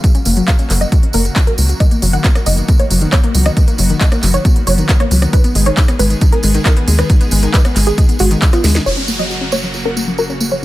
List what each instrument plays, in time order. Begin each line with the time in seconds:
Already playing: supersaw synth C#3
0.04 supersaw synth F#3 A#3 F#4, synth arpeggio sound F#4, kick, closed hi-hat, tambourine
0.15 synth arpeggio sound C#4, closed hi-hat, tambourine
0.25 analog synth bass F#1, synth arpeggio sound A#3, open hi-hat, tambourine
0.36 synth arpeggio sound F#3, closed hi-hat, tambourine
0.48 synth arpeggio sound F#4, synth pluck F5, kick, clap, closed hi-hat, tambourine
0.59 synth arpeggio sound C#4, closed hi-hat, tambourine
0.70 analog synth bass F#1, synth arpeggio sound A#3, clap, open hi-hat, tambourine
0.81 synth arpeggio sound F#3, synth pluck D#5, closed hi-hat, tambourine
0.92 synth arpeggio sound F#4, kick, closed hi-hat, tambourine
1.03 synth arpeggio sound C#4, closed hi-hat
1.13 analog synth bass F#1, synth arpeggio sound A#3, synth pluck A#4, open hi-hat, tambourine
1.25 synth arpeggio sound A#4, closed hi-hat, tambourine
1.36 synth arpeggio sound C#5, kick, clap, closed hi-hat, tambourine
1.47 synth pluck A#4, synth arpeggio sound A#4, closed hi-hat
1.58 analog synth bass C#2, synth arpeggio sound A#3, open hi-hat, tambourine
1.69 synth arpeggio sound F#4, closed hi-hat, tambourine
1.80 supersaw synth D#3 B3 F#4, synth arpeggio sound B3, synth pluck D#5, kick, closed hi-hat, tambourine
1.91 synth arpeggio sound A#3, closed hi-hat, tambourine
2.02 analog synth bass F#1, synth arpeggio sound F#3, open hi-hat, tambourine
2.13 synth arpeggio sound D#3, synth pluck F#5, closed hi-hat, tambourine
2.24 synth arpeggio sound B3, kick, clap, closed hi-hat, tambourine
2.35 synth arpeggio sound A#3, cross-stick, closed hi-hat, tambourine
2.46 analog synth bass F#1, synth arpeggio sound F#3, synth pluck D#5, open hi-hat, tambourine
2.57 synth arpeggio sound D#3, closed hi-hat, tambourine
2.68 synth arpeggio sound B3, kick, closed hi-hat, tambourine
2.79 synth arpeggio sound A#3, synth pluck C#5, closed hi-hat
2.90 analog synth bass F#1, synth arpeggio sound F#3, open hi-hat, tambourine
3.01 synth arpeggio sound D#3, closed hi-hat, tambourine
3.12 synth arpeggio sound B3, synth pluck C#5, kick, cross-stick, clap, closed hi-hat, tambourine
3.24 synth arpeggio sound A#3, closed hi-hat
3.34 analog synth bass C#2, synth arpeggio sound F#3, open hi-hat, tambourine
3.46 synth arpeggio sound D#3, synth pluck D#5, cross-stick, closed hi-hat, tambourine
3.57 synth arpeggio sound B3, kick, closed hi-hat, tambourine
3.68 synth arpeggio sound A#3, closed hi-hat, tambourine
3.78 analog synth bass F#1, synth arpeggio sound F#3, open hi-hat, tambourine
3.89 synth arpeggio sound D#3, closed hi-hat, tambourine
4.01 synth arpeggio sound B3, synth pluck D#5, kick, clap, closed hi-hat, tambourine
4.12 synth arpeggio sound A#3, cross-stick, closed hi-hat, tambourine
4.23 analog synth bass F#1, synth arpeggio sound F#3, clap, open hi-hat, tambourine
4.34 synth arpeggio sound D#3, synth pluck C#5, closed hi-hat, tambourine
4.45 synth arpeggio sound B3, kick, closed hi-hat, tambourine
4.56 synth arpeggio sound A#3, closed hi-hat
4.67 analog synth bass F#1, synth arpeggio sound F#3, synth pluck C#5, open hi-hat, tambourine
4.78 synth arpeggio sound D#3, closed hi-hat, tambourine
4.89 synth arpeggio sound B3, kick, clap, closed hi-hat, tambourine
5.00 synth arpeggio sound A#3, synth pluck C#5, cross-stick, closed hi-hat
5.11 analog synth bass C#2, synth arpeggio sound F#3, open hi-hat, tambourine
5.22 synth arpeggio sound D#3, cross-stick, closed hi-hat, tambourine
5.33 supersaw synth D#3 G#3 G#4, synth arpeggio sound D#4, synth pluck B4, kick, closed hi-hat, tambourine
5.44 synth arpeggio sound B3, closed hi-hat, tambourine
5.55 analog synth bass G#1, synth arpeggio sound G#3, open hi-hat, tambourine
5.65 synth arpeggio sound D#3, synth pluck C#5, closed hi-hat, tambourine
5.77 synth arpeggio sound D#4, kick, clap, closed hi-hat, tambourine
5.88 synth arpeggio sound B3, cross-stick, closed hi-hat, tambourine
5.99 analog synth bass G#1, synth arpeggio sound G#3, synth pluck B4, open hi-hat, tambourine
6.10 synth arpeggio sound D#3, closed hi-hat, tambourine
6.21 synth arpeggio sound D#4, kick, closed hi-hat, tambourine
6.32 synth arpeggio sound B3, synth pluck A#4, closed hi-hat
6.43 analog synth bass G#1, synth arpeggio sound G#3, open hi-hat, tambourine
6.54 synth arpeggio sound D#3, closed hi-hat, tambourine
6.65 synth arpeggio sound D#4, synth pluck A#4, kick, cross-stick, clap, closed hi-hat, tambourine
6.77 synth arpeggio sound B3, closed hi-hat
6.88 analog synth bass D#2, synth arpeggio sound G#3, open hi-hat, tambourine
6.98 synth arpeggio sound D#3, synth pluck B4, cross-stick, closed hi-hat, tambourine
7.09 synth arpeggio sound D#4, kick, closed hi-hat, tambourine
7.21 synth arpeggio sound B3, closed hi-hat, tambourine
7.31 analog synth bass G#1, synth arpeggio sound G#3, open hi-hat, tambourine
7.43 synth arpeggio sound D#3, closed hi-hat, tambourine
7.54 synth arpeggio sound D#4, synth pluck B4, kick, clap, closed hi-hat, tambourine
7.65 synth arpeggio sound B3, cross-stick, closed hi-hat, tambourine
7.76 analog synth bass G#1, synth arpeggio sound G#3, clap, open hi-hat, tambourine
7.87 synth arpeggio sound D#3, synth pluck G#4, closed hi-hat, tambourine
7.98 synth arpeggio sound D#4, kick, closed hi-hat, tambourine
8.08 synth arpeggio sound B3, closed hi-hat, tambourine
8.19 analog synth bass G#1, synth arpeggio sound G#3, synth pluck F#4, open hi-hat, tambourine
8.30 synth arpeggio sound D#3, closed hi-hat, tambourine
8.42 synth arpeggio sound D#4, kick, clap, closed hi-hat, tambourine
8.53 synth arpeggio sound B3, synth pluck F4, cross-stick, closed hi-hat, tambourine
8.64 analog synth bass D#2, synth arpeggio sound G#3, snare, open hi-hat, tambourine
8.75 synth arpeggio sound D#3, snare, closed hi-hat, tambourine
8.86 analog synth bass F#1, supersaw synth C#3 F#3 A#3 F#4, synth arpeggio sound F#4, synth pluck C#5, tambourine, downlifter
8.97 synth arpeggio sound C#4, tambourine
9.08 synth arpeggio sound A#3, tambourine
9.19 synth arpeggio sound F#3, synth pluck D#5, tambourine
9.30 synth arpeggio sound F#4, tambourine
9.41 synth arpeggio sound C#4
9.52 synth arpeggio sound A#3, synth pluck C#5, tambourine
9.63 synth arpeggio sound F#3
9.74 synth arpeggio sound F#4, tambourine
9.85 synth arpeggio sound C#4, synth pluck A#4
9.96 synth arpeggio sound A#3, tambourine
10.08 synth arpeggio sound F#3, tambourine
10.18 synth arpeggio sound F#4, synth pluck A#4, tambourine
10.30 synth arpeggio sound C#4, tambourine
10.40 synth arpeggio sound A#3, tambourine
10.51 synth arpeggio sound F#3, synth pluck C#5, tambourine